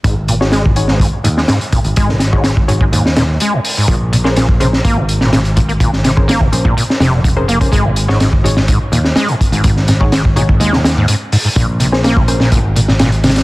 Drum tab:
HH |x---x---x---x---x---x---x-x-x-x-|x---x---x---x---x---x---x---o---|x---x---x---x---x---x---x-x-x-x-|x---x---x---x---x---x---x---x-x-|
SD |------o-o-----o-------o-o-------|--o-o---o---------o-o-----------|------o-o-----o-------o-o-------|--o-o---o---------o-o-----------|
BD |o---------o-----o-----------o---|o-----o---o---o-----------------|o---------o-----o-----------o---|o-----o---o---o---------o-----o-|

HH |x---x---x---x---x---x---x-x-x-x-|x---x---x---x---x---x---x---o---|x---x---x---x---x---x---x-x-xxx-|
SD |------o-o-----o-------o-o-------|--o-o---o---------o-o-----------|------o-o-----o-------o-o---ooo-|
BD |o---------o-----o-----------o---|o-----o---o---o-----------------|o---------o-----o---------------|